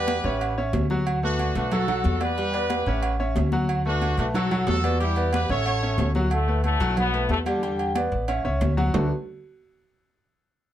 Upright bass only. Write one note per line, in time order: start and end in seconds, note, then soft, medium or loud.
0.00 0.19 E2 medium
0.24 0.70 A1 medium
0.73 1.50 D2 loud
1.55 2.01 B1 loud
2.05 2.81 E2 loud
2.86 3.32 A1 medium
3.36 4.12 D2 loud
4.17 4.64 B1 loud
4.67 5.44 E2 loud
5.49 5.95 A1 medium
5.98 6.75 D2 loud
6.80 7.26 B1 loud
7.29 8.06 E2 medium
8.12 8.42 A1 medium
8.45 8.60 C#2 medium
8.61 8.90 D2 loud
8.94 9.10 D2 loud